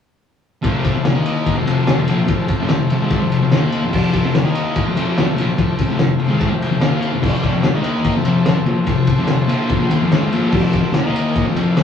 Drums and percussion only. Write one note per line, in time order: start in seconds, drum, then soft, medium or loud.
0.64 kick loud
0.64 ride loud
0.85 kick medium
0.85 ride medium
1.05 snare loud
1.05 ride loud
1.26 ride medium
1.46 kick loud
1.46 ride loud
1.67 ride medium
1.87 snare loud
1.87 ride loud
2.08 ride medium
2.28 kick loud
2.28 ride loud
2.48 kick medium
2.48 ride medium
2.69 snare loud
2.69 ride medium
2.90 ride medium
3.10 kick loud
3.10 ride loud
3.32 ride medium
3.52 snare loud
3.52 ride medium
3.72 ride medium
3.93 kick loud
3.93 crash loud
4.13 kick medium
4.13 ride medium
4.35 snare loud
4.35 ride medium
4.55 ride medium
4.76 kick loud
4.76 ride loud
4.97 ride medium
5.18 snare loud
5.18 ride loud
5.38 ride medium
5.58 kick loud
5.58 ride loud
5.79 kick medium
5.79 ride medium
5.99 snare loud
5.99 ride medium
6.20 ride medium
6.41 kick loud
6.41 ride loud
6.62 ride medium
6.81 snare loud
6.81 ride loud
7.02 ride medium
7.23 kick loud
7.23 crash loud
7.43 kick medium
7.43 ride medium
7.63 snare loud
7.63 ride medium
7.84 ride medium
8.05 kick loud
8.05 ride loud
8.25 ride medium
8.46 snare loud
8.46 ride loud
8.66 ride medium
8.87 kick loud
8.87 ride loud
9.07 kick medium
9.07 ride medium
9.27 snare loud
9.27 ride medium
9.49 ride medium
9.69 kick loud
9.69 ride loud
9.91 ride medium
10.12 snare loud
10.12 ride loud
10.32 ride medium
10.52 kick loud
10.52 crash loud
10.73 kick medium
10.73 ride medium
10.94 snare medium
10.94 ride medium
11.16 ride medium
11.35 kick loud
11.35 ride medium
11.56 ride medium
11.77 snare loud
11.77 ride loud